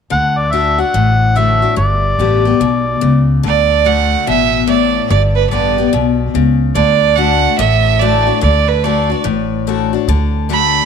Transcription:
0.10 D2 D3 F#5
0.38 D5
0.52 D3 A3 D4 F#4 E5
0.78 D4 F#4 F#5
0.94 A1 A2
1.35 D3 A3 D4 F#4 E5
1.62 D4 F#4
1.76 G1 G2 D5
2.19 A1 D3 G3 B3 G4
2.45 B3 G4
2.60 B1 B2
3.01 C#2 C#3
3.43 D2 D3 D5
3.84 D3 A3 D4 F#4 F#5
4.27 A1 B2 E5
4.67 A2 D5
5.10 G1 G2 D5
5.36 B4
5.50 A1 D3 G3 B3 G4 D5
5.78 B3 G4
5.93 B1 B2
6.34 C#2 C#3
6.75 D2 D3 D5
7.16 D3 A3 D4 F#4 F#5
7.58 A1 A2 E5
8.00 D3 A3 D4 F#4 D5
8.27 D4 F#4
8.41 D2 D3 D5
8.69 B4
8.84 D3 A3 D4 F#4 D5
9.10 D4 F#4
9.24 A1 A2
9.67 D3 A3 D4 F#4
9.93 D4 F#4
10.08 D2 D3
10.49 D3 A3 D4 F#4 B5

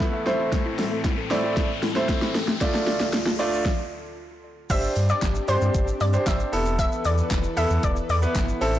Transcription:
Already playing: E2 E3 A3 B3 E4 A4 B4, riser
0.00 E4, kick, snare
0.13 E5
0.26 A2 A3 C4 E4 C5, snare
0.39 E4
0.52 A3, kick, snare, closed hi-hat
0.66 E4
0.78 A4, snare, open hi-hat
0.92 A3
1.04 E4, kick, snare, closed hi-hat
1.18 A4
1.31 A3 C4 E4 D5, snare, open hi-hat
1.44 E4
1.57 kick, snare, closed hi-hat
1.83 E4, snare, open hi-hat
1.96 A3 C4 E4 A4 C5, snare
2.09 kick, snare, closed hi-hat
2.22 E4, snare
2.35 A4, snare, open hi-hat
2.48 A3, snare
2.61 D2 D3 A3 D4 F4 D5, kick, snare, closed hi-hat, shaker
2.74 A5, snare, shaker
2.87 F4, snare, open hi-hat, shaker
3.00 snare, shaker
3.13 snare, closed hi-hat, shaker
3.26 F4, snare, shaker
3.39 A3 D4 F4 D5, open hi-hat, shaker
3.53 shaker
3.65 kick, snare
4.70 G1 C4 D4 G4 C5 E5, kick, closed hi-hat, crash, shaker
4.83 shaker
4.96 G2, open hi-hat, shaker
5.09 D5, shaker
5.22 G1, kick, snare, clap, closed hi-hat, shaker
5.35 shaker
5.48 G2 D4 G4 C5, open hi-hat, shaker
5.61 G2, shaker
5.74 G1, kick, closed hi-hat, shaker
5.88 shaker
6.00 G2 D5, open hi-hat, shaker
6.13 D4 G4 C5, shaker
6.26 G1 E5, kick, snare, clap, closed hi-hat, shaker
6.40 shaker
6.52 E1 E3 B3 E4 A4 B4, open hi-hat, shaker
6.66 shaker
6.79 E5, kick, closed hi-hat, shaker
6.92 shaker
7.05 E2 D5, open hi-hat, shaker
7.18 shaker
7.31 E1, kick, snare, clap, closed hi-hat, shaker
7.44 shaker
7.57 E2 B3 E4 A4 E5, open hi-hat, shaker
7.70 E2, shaker
7.83 E1 D5, kick, closed hi-hat, shaker
7.96 shaker
8.09 E2 D5, open hi-hat, shaker
8.22 B3 E4 B4, shaker
8.35 G1, kick, snare, clap, closed hi-hat, shaker
8.49 shaker
8.61 A1 A3 C4 E4 A4, open hi-hat, shaker
8.74 shaker

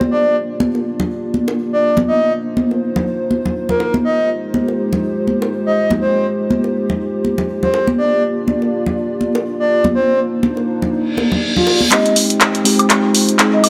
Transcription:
Already playing: A#3 D4 F4 G4 D5
0.01 high conga
0.11 D5
0.60 high conga
0.75 high bongo
1.00 low conga
1.34 high conga
1.48 high bongo
1.73 D5
1.97 high conga, low conga
2.08 D#4 C5 D#5
2.57 high conga
2.71 high bongo
2.96 low conga
3.31 high conga
3.46 low conga
3.69 A#4, low conga
3.80 high bongo
3.94 high conga
4.05 G#3 G4 C5 D#5
4.54 high conga
4.68 high bongo
4.93 low conga
5.27 high conga
5.42 high bongo
5.66 D#5
5.90 high conga, low conga
6.02 C5
6.50 high conga
6.64 high bongo
6.90 low conga
7.25 high conga
7.38 low conga
7.63 C5, low conga
7.74 A#3 D4 F4 D5, high bongo
7.87 high conga
7.98 D5
8.48 high conga
8.62 high bongo
8.86 low conga
9.21 high conga
9.35 high bongo
9.60 D5
9.84 high conga, low conga
9.95 A#3 D4 D#4 C5
10.43 high conga
10.57 high bongo
10.82 low conga
10.93 G4 D5, reverse cymbal
11.17 high bongo, high conga
11.32 low conga
11.56 F4, low conga
11.67 high bongo
11.81 high conga
11.91 G#3 C4 D#4 F4 G4 C5 D#5 G5, clap, closed hi-hat, riser
12.06 closed hi-hat
12.16 open hi-hat
12.30 closed hi-hat
12.41 clap, closed hi-hat
12.55 closed hi-hat
12.64 G#3 C4 D#4 G4, open hi-hat
12.79 closed hi-hat, high woodblock
12.90 clap, closed hi-hat
13.15 open hi-hat
13.29 closed hi-hat
13.39 G#3 C4 D#4 G#4, clap, closed hi-hat
13.53 D#5
13.64 open hi-hat, high woodblock

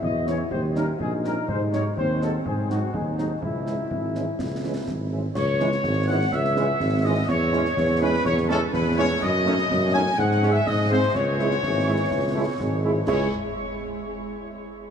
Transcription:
Already playing: E4
0.02 E2 D#5, concert bass drum
0.27 E3 C#4 E4 C#5, snare
0.51 D#2 G4 C5, concert bass drum
0.75 G3 C#4 D#4 G4 A#4 C#5, snare
0.99 A#1 D#4 G#4, concert bass drum
1.24 G3 C#4 D#4 G4 A#4 C#5, snare
1.48 G#2 C5, concert bass drum
1.73 F#3 G#3 D#4 F#4 C#5 D#5, snare
1.96 D#2 C4 C5, concert bass drum
2.22 F#3 G#3 D#4 F#4 A4 D#5, snare
2.45 G#2 G#4, concert bass drum
2.69 F#3 G#3 D#4 F#4 D#5, snare
2.93 D#2 D#4 G#4, concert bass drum
3.17 F#3 G#3 D#4 F#4 D#5, snare
3.42 C#2 E4, concert bass drum
3.66 E3 G#3 C#4 E4 E5, snare
3.90 G#1, concert bass drum
4.14 E3 G#3 C#4 E4 E5, snare
4.38 C#2, concert bass drum, snare
4.63 E3 G#3 C#4 E4 E5
4.87 G#1, concert bass drum, snare
5.12 E3 G#3 C#4 E4 E5
5.35 C#2 C#5 C#6, concert bass drum, snare, crash
5.60 E3 G#3 C#4 E4, snare
5.72 snare
5.84 G#1, concert bass drum, snare
6.07 E3 G#3 C#4 E4 F#5 F#6
6.32 C#2 E5 E6, concert bass drum, snare
6.45 snare
6.56 E3 G#3 C#4 E4, snare
6.80 G#1, concert bass drum, snare
7.04 E3 G#3 C#4 E4 D#5 D#6
7.28 E2 C#5 C#6, concert bass drum, snare, crash
7.52 G#3 C#4 E4, snare
7.65 snare
7.77 E2, concert bass drum, snare
8.00 G#3 C#4 E4 B4 B5
8.25 E2 C#5 C#6, concert bass drum, snare
8.37 snare
8.48 G#3 C#4 E4 A4 A5, snare
8.71 E2 B4 B5, concert bass drum, snare
8.96 G#3 C#4 E4 C#5 C#6
9.20 F#2 D#5 D#6, concert bass drum, snare, crash
9.45 A3 C#4 D#4, snare
9.58 snare
9.70 F#2, concert bass drum, snare
9.93 A3 C#4 D#4 G#5 G#6
10.18 G#2 F#5 F#6, concert bass drum, snare
10.31 snare
10.41 G#3 C#4 G#4, snare
10.50 E5 E6
10.66 G#2 D#5 D#6, concert bass drum, snare
10.89 G#3 C4 G#4 C5 C6
11.14 C#2 C#5 C#6, concert bass drum, snare, crash
11.38 G#3 E4 G#4, snare
11.51 snare
11.63 G#1 E3, concert bass drum, snare
11.86 G#3 E4 G#4
12.11 C#2, concert bass drum, snare
12.34 G#3 A3 E4 G#4
12.59 G#1 G#3, concert bass drum, snare
12.83 G#3 E4 G#4
13.06 C#2 G#3 E4 G#4 C#5 C#6, concert bass drum, snare, crash

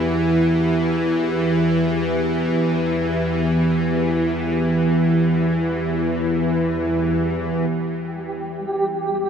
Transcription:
Already playing: E2 E3 B3 E4 G4
7.72 E2 E3 G4

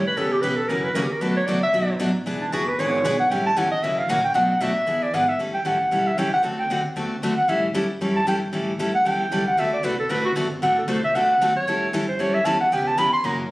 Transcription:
Already playing: A2
0.07 B4
0.17 C#3 E3 B3 C#4 G4 A4
0.32 G4
0.42 B2 C#3 E3 B3 C#4 G4 B4
0.56 A4
0.68 F#2 C#3 E3 A#3 C#4 F#4 A#4
0.83 B4
0.94 E2 C#3 E3 A#3 C#4 F#4 A#4
1.03 G4
1.12 A#4
1.21 D2 B2 F#3 A3 D4 F#4 B4
1.37 C#5
1.47 C#2 B2 F#3 A3 D4 F#4 D5
1.63 E5
1.73 B1 B2 F#3 A3 D4 F#4
2.00 A1 B2 F#3 A3 D4 F#4
2.26 E1 E3 B3 D4 G#4
2.41 D4
2.52 F#1 E3 B3 D4 F#4 G#4
2.69 B4
2.78 G#1 E3 B3 D4 G#4 C#5
3.04 B1 E3 B3 D4 G#4
3.19 F#5
3.30 A1 E3 G3 C#4 E4 A4 G5
3.46 A5
3.56 E2 E3 G3 C#4 E4 A4 F#5
3.71 D#5
3.82 F#2 C#3 E3 A#3 C#4 F#4 E5
3.99 F5
4.08 A#2 C#3 E3 A#3 C#4 F#4 F#5
4.24 G5
4.34 B2 F#3 A3 D4 F#4 F#5
4.50 F#5
4.61 A2 B2 F#3 A3 D4 F#4 E5
4.76 muted upright bass stroke
4.87 E2 E3 B3 D4 G#4
5.02 D5
5.14 G#2 E3 B3 D4 G#4 F#5
5.29 E5
5.39 A2 E3 G3 C#4 E4 A4
5.54 G5, muted upright bass stroke
5.65 A1 E3 G3 C#4 E4 A4 F#5
5.91 B1 E3 G3 C#4 E4 A4
6.07 E5
6.17 C#2 E3 G3 C#4 E4 A4 G5
6.33 F#5
6.43 D2 D3 A3 C4 F#4 A4
6.59 G5
6.70 D#2 D3 A3 C4 F#4 A4 F#5
6.96 E2 D3 A3 C4 F#4 A4
7.22 F#2 D3 A3 C4 F#4 A4
7.37 F#5, muted upright bass stroke
7.48 A2 E3 G3 C#4 E4 A4 E5
7.74 E2 E3 G3 C#4 E4 A4
7.90 muted upright bass stroke
8.01 F#2 E3 G3 C#4 E4 A4
8.16 A5
8.26 G2 E3 G3 C#4 E4 A4 G5
8.53 A2 E3 G3 C#4 E4 A4
8.79 D2 E3 G3 C#4 E4 A4
8.95 F#5
9.05 E2 E3 G3 C#4 E4 A4 G5
9.31 C#2 E3 G3 C#4 E4 A4
9.47 F#5
9.57 D2 D3 A3 C4 F#4 A4 E5
9.73 D5
9.83 C2 D3 A3 C4 F#4 A4 B4
10.00 A4
10.09 A1 D3 A3 C4 F#4 A4 B4
10.26 F#4
10.36 G1 D3 A3 C4 F#4 A4
10.62 A1 D3 A3 C4 F#4 A4 F#5
10.78 A4
10.88 C2 D3 A3 C4 F#4 A4 C5
11.04 E5
11.15 D2 D3 A3 C4 F#4 A4 F#5
11.41 F#2 D3 A3 C4 F#4 A4
11.56 C#5
11.67 A2 E3 G3 C#4 E4 A4
11.93 G2 E3 G3 C#4 E4 A4
12.08 C5
12.19 F#2 E3 G3 C#4 E4 A4 C#5
12.34 E5
12.45 E2 E3 G3 C#4 E4 A4 A5
12.61 F#5
12.71 C#2 C#3 E3 B3 C#4 G4 G5
12.87 A5
12.98 E2 C#3 E3 B3 C#4 G4 B5
13.13 C6
13.24 F#2 C#3 E3 A#3 C#4 F#4 A#5
13.40 C#5

